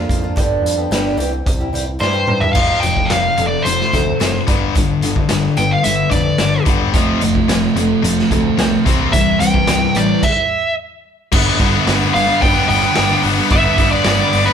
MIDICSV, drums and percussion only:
0, 0, Header, 1, 2, 480
1, 0, Start_track
1, 0, Tempo, 547945
1, 320, Time_signature, 4, 2, 24, 8
1, 12728, End_track
2, 0, Start_track
2, 0, Title_t, "Drums"
2, 83, Note_on_c, 9, 36, 86
2, 91, Note_on_c, 9, 42, 62
2, 170, Note_off_c, 9, 36, 0
2, 179, Note_off_c, 9, 42, 0
2, 325, Note_on_c, 9, 36, 99
2, 333, Note_on_c, 9, 42, 76
2, 413, Note_off_c, 9, 36, 0
2, 420, Note_off_c, 9, 42, 0
2, 579, Note_on_c, 9, 42, 64
2, 666, Note_off_c, 9, 42, 0
2, 806, Note_on_c, 9, 38, 99
2, 806, Note_on_c, 9, 42, 87
2, 894, Note_off_c, 9, 38, 0
2, 894, Note_off_c, 9, 42, 0
2, 1052, Note_on_c, 9, 42, 61
2, 1140, Note_off_c, 9, 42, 0
2, 1283, Note_on_c, 9, 36, 101
2, 1285, Note_on_c, 9, 42, 70
2, 1371, Note_off_c, 9, 36, 0
2, 1373, Note_off_c, 9, 42, 0
2, 1533, Note_on_c, 9, 42, 57
2, 1621, Note_off_c, 9, 42, 0
2, 1765, Note_on_c, 9, 38, 50
2, 1853, Note_off_c, 9, 38, 0
2, 1992, Note_on_c, 9, 45, 85
2, 2080, Note_off_c, 9, 45, 0
2, 2114, Note_on_c, 9, 43, 73
2, 2201, Note_off_c, 9, 43, 0
2, 2232, Note_on_c, 9, 49, 104
2, 2238, Note_on_c, 9, 36, 106
2, 2319, Note_off_c, 9, 49, 0
2, 2325, Note_off_c, 9, 36, 0
2, 2477, Note_on_c, 9, 42, 67
2, 2564, Note_off_c, 9, 42, 0
2, 2599, Note_on_c, 9, 36, 71
2, 2687, Note_off_c, 9, 36, 0
2, 2716, Note_on_c, 9, 38, 108
2, 2716, Note_on_c, 9, 42, 88
2, 2803, Note_off_c, 9, 38, 0
2, 2803, Note_off_c, 9, 42, 0
2, 2957, Note_on_c, 9, 42, 59
2, 3045, Note_off_c, 9, 42, 0
2, 3204, Note_on_c, 9, 42, 89
2, 3292, Note_off_c, 9, 42, 0
2, 3332, Note_on_c, 9, 38, 30
2, 3419, Note_off_c, 9, 38, 0
2, 3446, Note_on_c, 9, 36, 68
2, 3448, Note_on_c, 9, 42, 65
2, 3534, Note_off_c, 9, 36, 0
2, 3536, Note_off_c, 9, 42, 0
2, 3689, Note_on_c, 9, 38, 96
2, 3689, Note_on_c, 9, 42, 89
2, 3776, Note_off_c, 9, 38, 0
2, 3776, Note_off_c, 9, 42, 0
2, 3921, Note_on_c, 9, 42, 72
2, 3925, Note_on_c, 9, 36, 105
2, 4008, Note_off_c, 9, 42, 0
2, 4012, Note_off_c, 9, 36, 0
2, 4166, Note_on_c, 9, 36, 116
2, 4167, Note_on_c, 9, 42, 89
2, 4254, Note_off_c, 9, 36, 0
2, 4255, Note_off_c, 9, 42, 0
2, 4400, Note_on_c, 9, 42, 78
2, 4488, Note_off_c, 9, 42, 0
2, 4521, Note_on_c, 9, 36, 84
2, 4609, Note_off_c, 9, 36, 0
2, 4633, Note_on_c, 9, 38, 112
2, 4633, Note_on_c, 9, 42, 97
2, 4720, Note_off_c, 9, 38, 0
2, 4720, Note_off_c, 9, 42, 0
2, 4876, Note_on_c, 9, 42, 64
2, 4963, Note_off_c, 9, 42, 0
2, 5116, Note_on_c, 9, 42, 88
2, 5203, Note_off_c, 9, 42, 0
2, 5355, Note_on_c, 9, 42, 61
2, 5357, Note_on_c, 9, 36, 80
2, 5443, Note_off_c, 9, 42, 0
2, 5445, Note_off_c, 9, 36, 0
2, 5592, Note_on_c, 9, 38, 91
2, 5592, Note_on_c, 9, 42, 82
2, 5680, Note_off_c, 9, 38, 0
2, 5680, Note_off_c, 9, 42, 0
2, 5834, Note_on_c, 9, 42, 78
2, 5837, Note_on_c, 9, 36, 123
2, 5922, Note_off_c, 9, 42, 0
2, 5924, Note_off_c, 9, 36, 0
2, 6077, Note_on_c, 9, 36, 115
2, 6080, Note_on_c, 9, 42, 93
2, 6165, Note_off_c, 9, 36, 0
2, 6167, Note_off_c, 9, 42, 0
2, 6318, Note_on_c, 9, 42, 63
2, 6405, Note_off_c, 9, 42, 0
2, 6440, Note_on_c, 9, 36, 83
2, 6528, Note_off_c, 9, 36, 0
2, 6564, Note_on_c, 9, 38, 114
2, 6564, Note_on_c, 9, 42, 94
2, 6652, Note_off_c, 9, 38, 0
2, 6652, Note_off_c, 9, 42, 0
2, 6803, Note_on_c, 9, 42, 62
2, 6891, Note_off_c, 9, 42, 0
2, 7046, Note_on_c, 9, 42, 87
2, 7134, Note_off_c, 9, 42, 0
2, 7174, Note_on_c, 9, 38, 32
2, 7261, Note_off_c, 9, 38, 0
2, 7280, Note_on_c, 9, 36, 80
2, 7283, Note_on_c, 9, 42, 71
2, 7368, Note_off_c, 9, 36, 0
2, 7370, Note_off_c, 9, 42, 0
2, 7522, Note_on_c, 9, 38, 105
2, 7522, Note_on_c, 9, 42, 90
2, 7609, Note_off_c, 9, 38, 0
2, 7609, Note_off_c, 9, 42, 0
2, 7762, Note_on_c, 9, 36, 116
2, 7766, Note_on_c, 9, 42, 78
2, 7850, Note_off_c, 9, 36, 0
2, 7854, Note_off_c, 9, 42, 0
2, 8000, Note_on_c, 9, 36, 110
2, 8000, Note_on_c, 9, 42, 98
2, 8087, Note_off_c, 9, 36, 0
2, 8087, Note_off_c, 9, 42, 0
2, 8236, Note_on_c, 9, 42, 73
2, 8324, Note_off_c, 9, 42, 0
2, 8359, Note_on_c, 9, 36, 81
2, 8447, Note_off_c, 9, 36, 0
2, 8475, Note_on_c, 9, 38, 109
2, 8475, Note_on_c, 9, 42, 99
2, 8562, Note_off_c, 9, 38, 0
2, 8562, Note_off_c, 9, 42, 0
2, 8715, Note_on_c, 9, 42, 73
2, 8802, Note_off_c, 9, 42, 0
2, 8960, Note_on_c, 9, 36, 91
2, 8961, Note_on_c, 9, 49, 94
2, 9047, Note_off_c, 9, 36, 0
2, 9049, Note_off_c, 9, 49, 0
2, 9919, Note_on_c, 9, 49, 119
2, 9921, Note_on_c, 9, 36, 112
2, 10007, Note_off_c, 9, 49, 0
2, 10008, Note_off_c, 9, 36, 0
2, 10154, Note_on_c, 9, 46, 59
2, 10160, Note_on_c, 9, 36, 91
2, 10242, Note_off_c, 9, 46, 0
2, 10248, Note_off_c, 9, 36, 0
2, 10402, Note_on_c, 9, 38, 109
2, 10402, Note_on_c, 9, 46, 77
2, 10489, Note_off_c, 9, 38, 0
2, 10489, Note_off_c, 9, 46, 0
2, 10650, Note_on_c, 9, 46, 54
2, 10738, Note_off_c, 9, 46, 0
2, 10881, Note_on_c, 9, 36, 106
2, 10882, Note_on_c, 9, 46, 76
2, 10969, Note_off_c, 9, 36, 0
2, 10970, Note_off_c, 9, 46, 0
2, 11121, Note_on_c, 9, 46, 58
2, 11209, Note_off_c, 9, 46, 0
2, 11349, Note_on_c, 9, 38, 118
2, 11349, Note_on_c, 9, 46, 77
2, 11437, Note_off_c, 9, 38, 0
2, 11437, Note_off_c, 9, 46, 0
2, 11589, Note_on_c, 9, 46, 70
2, 11676, Note_off_c, 9, 46, 0
2, 11829, Note_on_c, 9, 46, 92
2, 11833, Note_on_c, 9, 36, 110
2, 11916, Note_off_c, 9, 46, 0
2, 11921, Note_off_c, 9, 36, 0
2, 12071, Note_on_c, 9, 46, 70
2, 12072, Note_on_c, 9, 36, 100
2, 12159, Note_off_c, 9, 46, 0
2, 12160, Note_off_c, 9, 36, 0
2, 12303, Note_on_c, 9, 38, 120
2, 12303, Note_on_c, 9, 46, 89
2, 12391, Note_off_c, 9, 38, 0
2, 12391, Note_off_c, 9, 46, 0
2, 12551, Note_on_c, 9, 46, 64
2, 12638, Note_off_c, 9, 46, 0
2, 12728, End_track
0, 0, End_of_file